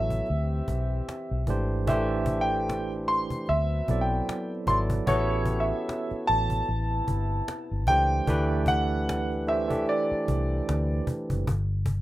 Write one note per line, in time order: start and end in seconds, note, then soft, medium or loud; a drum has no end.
0.00 0.20 A1 medium
0.00 0.30 F#3 medium
0.00 0.30 B3 medium
0.00 0.29 E4 medium
0.00 0.29 A4 medium
0.00 0.29 C#5 medium
0.00 1.44 E5 medium
0.10 cajon bass medium
0.26 1.45 E3 medium
0.26 1.45 C4 medium
0.26 1.45 G4 medium
0.26 cajon slap soft
0.30 0.60 D2 medium
0.68 1.00 B1 medium
0.68 cajon bass medium
0.68 cajon slap soft
1.09 cajon slap medium
1.31 1.45 B1 medium
1.47 1.88 G#1 medium
1.47 1.82 E3 medium
1.47 1.83 A3 medium
1.47 1.83 D4 medium
1.47 1.83 G4 medium
1.47 1.84 C5 medium
1.47 cajon bass medium
1.87 3.25 A1 loud
1.87 3.26 E3 medium
1.87 3.05 E3 medium
1.87 3.27 A3 medium
1.87 3.05 D4 medium
1.87 3.27 D4 medium
1.87 3.27 G4 medium
1.87 3.05 A4 medium
1.87 3.28 C5 loud
1.87 2.42 E5 medium
1.87 cajon bass loud
2.26 cajon bass medium
2.41 2.90 G5 medium
2.69 cajon slap loud
2.92 cajon slap soft
3.08 3.49 C6 medium
3.08 cajon slap soft
3.30 cajon bass medium
3.46 3.80 D2 medium
3.46 4.65 F#3 medium
3.46 4.65 B3 medium
3.46 4.65 C4 medium
3.46 4.03 E5 medium
3.46 cajon slap soft
3.88 4.20 B1 medium
3.88 4.57 F#3 medium
3.88 4.58 B3 medium
3.88 4.58 E4 medium
3.88 4.58 A4 medium
3.88 4.59 D5 medium
3.88 cajon bass medium
3.88 cajon slap soft
4.01 4.51 G5 medium
4.29 cajon slap loud
4.67 4.99 G#1 medium
4.67 5.02 F#3 medium
4.67 5.02 B3 medium
4.67 5.03 E4 medium
4.67 5.03 A4 medium
4.67 5.04 D5 medium
4.67 4.77 C6 medium
4.67 cajon bass medium
4.90 cajon bass medium
5.06 5.71 A1 loud
5.06 6.25 E3 medium
5.06 6.47 B3 medium
5.06 6.25 C#4 medium
5.06 6.47 E4 medium
5.06 6.46 F#4 medium
5.06 6.25 G4 medium
5.06 6.47 A4 medium
5.06 5.15 B4 medium
5.06 5.62 C#5 medium
5.06 cajon bass loud
5.16 6.51 C#5 medium
5.46 cajon bass medium
5.60 6.29 E5 medium
5.89 cajon slap medium
6.11 muted fingered electric bass stroke soft
6.11 cajon slap soft
6.26 6.60 A1 medium
6.26 7.83 A5 loud
6.26 cajon slap soft
6.50 cajon bass medium
6.64 7.85 C3 medium
6.64 7.85 B3 medium
6.64 7.85 E4 medium
6.64 cajon slap soft
6.69 7.00 A1 medium
7.08 7.40 G1 medium
7.08 cajon bass medium
7.08 cajon slap soft
7.48 cajon slap loud
7.71 7.88 G1 medium
7.87 8.19 C#2 medium
7.87 8.22 E3 medium
7.87 8.23 A3 medium
7.87 8.23 D4 medium
7.87 8.23 G4 medium
7.87 8.24 C5 medium
7.87 8.70 G5 loud
7.87 cajon bass medium
8.27 9.84 D2 loud
8.27 9.32 E3 medium
8.27 9.32 A3 medium
8.27 9.33 D4 medium
8.27 9.33 G4 medium
8.27 9.33 B4 loud
8.27 cajon bass loud
8.66 9.44 F#5 medium
8.66 cajon bass medium
9.09 cajon slap loud
9.31 cajon slap soft
9.47 9.66 E3 medium
9.47 9.66 A3 medium
9.47 9.66 D4 medium
9.47 9.67 G4 medium
9.47 9.67 C5 medium
9.47 9.85 E5 medium
9.47 cajon slap soft
9.68 11.05 E3 medium
9.68 11.05 A3 medium
9.68 11.06 D4 medium
9.68 11.06 G4 medium
9.68 11.06 A4 medium
9.68 cajon bass medium
9.85 11.04 D5 medium
9.85 cajon slap soft
10.11 muted fingered electric bass stroke soft
10.28 10.60 C2 medium
10.28 cajon bass medium
10.28 cajon slap soft
10.69 11.00 D2 medium
10.69 cajon slap loud
11.07 cajon bass medium
11.30 11.45 F#1 medium
11.30 cajon bass medium
11.47 12.02 G1 loud
11.47 cajon bass loud
11.86 cajon bass loud